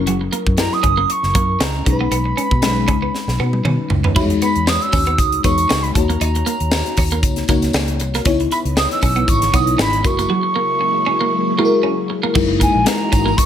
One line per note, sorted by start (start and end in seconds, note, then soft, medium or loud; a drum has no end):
0.00 0.44 F#3 medium
0.00 0.44 C#4 medium
0.00 0.44 E4 medium
0.00 0.44 A#4 medium
0.07 0.28 F#1 medium
0.07 0.16 F#3 medium
0.07 closed hi-hat medium
0.21 muted clean electric guitar stroke soft
0.32 0.41 A#3 medium
0.32 closed hi-hat medium
0.46 0.67 F#2 medium
0.46 kick medium
0.57 1.38 F#3 medium
0.57 1.38 C#4 medium
0.57 1.39 E4 medium
0.57 1.39 A#4 medium
0.57 0.74 A#5 loud
0.57 muted clean electric guitar stroke soft
0.57 snare loud
0.57 closed hi-hat medium
0.72 1.12 D#6 medium
0.72 snare soft
0.83 1.04 F#1 medium
0.83 0.92 C#4 medium
0.83 kick medium
0.83 closed hi-hat medium
0.97 1.05 A#3 medium
1.10 1.64 C#6 medium
1.10 closed hi-hat medium
1.23 1.33 F#1 medium
1.23 snare soft
1.35 1.55 F#2 medium
1.35 1.44 A#3 medium
1.35 kick medium
1.35 closed hi-hat medium
1.60 1.81 C#2 medium
1.60 1.69 C#4 medium
1.60 1.87 A#5 medium
1.60 snare loud
1.60 closed hi-hat medium
1.85 2.07 B1 medium
1.85 2.48 G#3 medium
1.85 2.48 C#4 medium
1.85 2.48 D#4 medium
1.85 1.93 A#4 medium
1.85 3.88 B5 medium
1.85 muted clean electric guitar stroke soft
1.85 kick medium
1.85 closed hi-hat medium
1.92 2.52 B4 medium
2.01 2.08 B3 medium
2.11 2.32 B1 medium
2.11 2.20 B3 medium
2.11 closed hi-hat medium
2.26 muted clean electric guitar stroke soft
2.37 2.46 C#4 medium
2.37 closed hi-hat medium
2.51 2.60 B2 medium
2.51 kick medium
2.62 2.88 B1 medium
2.62 3.43 G#3 medium
2.62 3.43 C#4 medium
2.62 3.43 D#4 medium
2.62 3.43 B4 medium
2.62 muted clean electric guitar stroke soft
2.62 snare loud
2.62 closed hi-hat medium
2.88 3.09 C#2 medium
2.88 2.97 C#4 medium
2.88 kick medium
2.88 closed hi-hat medium
3.02 3.10 B3 medium
3.15 snare soft
3.27 3.37 B1 medium
3.27 snare soft
3.39 3.60 B2 medium
3.39 3.48 B3 medium
3.53 high tom medium
3.65 3.76 B2 medium
3.65 3.74 C#4 medium
3.65 mid tom medium
3.90 4.04 C#2 medium
3.90 muted clean electric guitar stroke soft
3.90 floor tom medium
4.04 4.14 D#2 medium
4.04 4.12 B3 medium
4.04 floor tom medium
4.15 4.37 E2 loud
4.15 4.22 G3 medium
4.15 4.96 D#4 medium
4.15 4.25 E4 medium
4.15 4.96 F#4 medium
4.15 4.96 C#5 medium
4.15 kick loud
4.15 crash medium
4.15 tambourine soft
4.20 4.99 G#3 medium
4.30 muted clean electric guitar stroke soft
4.30 closed hi-hat soft
4.42 4.51 B3 medium
4.42 4.69 B5 medium
4.42 closed hi-hat medium
4.42 tambourine soft
4.56 4.76 E2 medium
4.56 closed hi-hat soft
4.67 4.83 D#6 medium
4.67 muted clean electric guitar stroke soft
4.67 snare loud
4.67 tambourine medium
4.82 5.20 E6 medium
4.82 closed hi-hat soft
4.92 5.18 D#2 medium
4.92 5.02 C#4 medium
4.92 kick medium
4.92 open hi-hat medium
4.92 tambourine soft
5.06 5.14 B3 medium
5.06 closed hi-hat soft
5.18 5.39 C#2 medium
5.18 5.43 D#6 loud
5.18 kick medium
5.18 closed hi-hat medium
5.18 tambourine soft
5.32 closed hi-hat soft
5.44 5.65 E2 medium
5.44 5.95 G#3 medium
5.44 5.53 B3 medium
5.44 5.95 D#4 medium
5.44 5.96 F#4 medium
5.44 5.96 C#5 medium
5.44 5.84 C#6 medium
5.44 kick medium
5.44 closed hi-hat medium
5.44 tambourine soft
5.58 closed hi-hat medium
5.58 tambourine soft
5.69 5.91 C#2 medium
5.69 5.78 C#4 medium
5.69 snare loud
5.69 tambourine medium
5.83 5.93 B5 medium
5.83 closed hi-hat soft
5.93 6.16 D#2 medium
5.93 6.78 A#3 medium
5.93 6.78 D#4 medium
5.93 6.78 F#4 medium
5.93 6.79 C#5 medium
5.93 7.44 A#5 medium
5.93 muted clean electric guitar stroke soft
5.93 kick loud
5.93 closed hi-hat medium
5.93 tambourine soft
6.09 6.17 A#3 medium
6.09 closed hi-hat soft
6.21 6.41 D#2 medium
6.21 6.30 D#4 medium
6.21 closed hi-hat medium
6.21 tambourine soft
6.35 muted clean electric guitar stroke soft
6.35 closed hi-hat soft
6.46 6.55 A#3 medium
6.46 closed hi-hat medium
6.46 tambourine soft
6.60 6.81 D#2 medium
6.60 closed hi-hat soft
6.71 muted clean electric guitar stroke soft
6.71 snare loud
6.71 tambourine medium
6.86 snare soft
6.86 closed hi-hat soft
6.97 7.23 D#2 medium
6.97 7.07 C#4 medium
6.97 kick medium
6.97 open hi-hat medium
6.97 tambourine soft
7.11 7.19 A#3 medium
7.11 closed hi-hat medium
7.11 tambourine soft
7.23 7.43 C#2 medium
7.23 kick medium
7.23 closed hi-hat medium
7.23 tambourine soft
7.36 snare soft
7.36 closed hi-hat soft
7.48 7.69 C#2 medium
7.48 8.10 A#3 medium
7.48 7.58 A#3 medium
7.48 8.10 D#4 medium
7.48 8.10 F#4 medium
7.48 8.10 C#5 medium
7.48 kick loud
7.48 closed hi-hat medium
7.48 tambourine soft
7.62 snare soft
7.62 closed hi-hat soft
7.62 tambourine soft
7.73 7.99 C#2 medium
7.73 7.84 C#4 medium
7.73 snare loud
7.73 tambourine medium
7.88 closed hi-hat soft
7.99 8.20 C2 medium
7.99 muted clean electric guitar stroke soft
7.99 closed hi-hat medium
7.99 tambourine soft
8.14 8.22 A#3 medium
8.14 snare soft
8.14 closed hi-hat medium
8.25 8.46 C#2 medium
8.25 12.31 C#3 medium
8.25 10.03 E3 medium
8.25 12.31 G#3 medium
8.25 9.06 B3 medium
8.25 10.03 B3 medium
8.25 8.35 C#4 medium
8.25 9.06 D#4 medium
8.25 9.06 E4 medium
8.25 9.06 C#5 loud
8.25 10.03 D#5 medium
8.25 kick loud
8.25 closed hi-hat medium
8.25 tambourine soft
8.40 muted clean electric guitar stroke soft
8.40 closed hi-hat soft
8.51 8.61 E4 medium
8.51 8.58 B5 medium
8.51 closed hi-hat medium
8.51 tambourine soft
8.65 8.85 C#2 medium
8.65 closed hi-hat soft
8.77 8.90 D#6 loud
8.77 muted clean electric guitar stroke soft
8.77 snare loud
8.77 tambourine medium
8.91 9.02 E6 medium
8.91 snare soft
8.91 closed hi-hat soft
9.01 9.23 B1 medium
9.01 9.11 C#4 medium
9.01 9.30 E6 medium
9.01 kick medium
9.01 open hi-hat medium
9.01 tambourine soft
9.16 9.24 B3 medium
9.16 closed hi-hat medium
9.28 9.48 G#1 medium
9.28 9.56 C#6 loud
9.28 kick medium
9.28 closed hi-hat medium
9.28 tambourine soft
9.42 snare soft
9.42 closed hi-hat medium
9.53 9.74 B1 medium
9.53 10.05 B3 medium
9.53 9.62 B3 medium
9.53 10.05 D#4 medium
9.53 10.03 E4 medium
9.53 10.05 C#5 medium
9.53 9.79 D#6 loud
9.53 kick loud
9.53 closed hi-hat medium
9.53 tambourine medium
9.67 closed hi-hat medium
9.78 10.05 G#1 medium
9.78 9.87 C#4 medium
9.78 10.08 B5 loud
9.78 snare loud
9.78 tambourine medium
9.93 closed hi-hat soft
10.04 10.25 F#1 medium
10.04 12.33 F#3 medium
10.04 10.87 G#3 medium
10.04 12.33 A#3 medium
10.04 12.33 E4 medium
10.04 10.87 E4 medium
10.04 10.87 F#4 medium
10.04 10.87 A#4 medium
10.04 12.10 C#6 medium
10.04 muted clean electric guitar stroke soft
10.04 kick loud
10.04 closed hi-hat medium
10.04 tambourine soft
10.19 10.26 A#3 medium
10.19 closed hi-hat medium
10.19 tambourine soft
10.30 10.39 F#3 medium
10.43 muted clean electric guitar stroke soft
10.56 10.64 A#3 medium
10.81 muted clean electric guitar stroke soft
11.06 11.15 C#4 medium
11.21 11.28 A#3 medium
11.58 12.19 G#3 medium
11.58 11.67 A#3 medium
11.58 12.19 E4 medium
11.58 12.20 F#4 medium
11.58 11.66 G#4 medium
11.65 12.23 A#4 loud
11.83 11.92 C#4 medium
12.10 muted clean electric guitar stroke soft
12.23 12.31 A#3 medium
12.35 12.67 F#1 loud
12.35 13.46 E3 medium
12.35 12.44 F#3 medium
12.35 12.76 G#3 medium
12.35 13.46 G#3 medium
12.35 13.46 A#3 medium
12.35 12.77 D#4 medium
12.35 12.77 E4 medium
12.35 13.46 F#4 medium
12.35 12.77 A#4 medium
12.35 13.46 D#5 medium
12.35 kick loud
12.35 crash loud
12.35 tambourine soft
12.48 muted clean electric guitar stroke soft
12.60 12.69 A#3 medium
12.60 12.88 G#5 medium
12.60 kick medium
12.60 closed hi-hat medium
12.60 tambourine soft
12.75 12.84 A#1 medium
12.84 13.46 G#3 medium
12.84 13.46 D#4 medium
12.84 13.46 E4 medium
12.84 13.46 A#4 medium
12.84 13.39 A#5 medium
12.84 muted clean electric guitar stroke soft
12.84 snare loud
12.84 closed hi-hat loud
12.84 tambourine medium
13.12 13.33 G#1 loud
13.12 13.21 C#4 medium
13.12 kick medium
13.12 closed hi-hat medium
13.12 tambourine soft
13.26 13.33 A#3 medium
13.26 tambourine soft
13.37 13.46 C#6 loud
13.37 kick medium
13.37 closed hi-hat medium
13.37 tambourine soft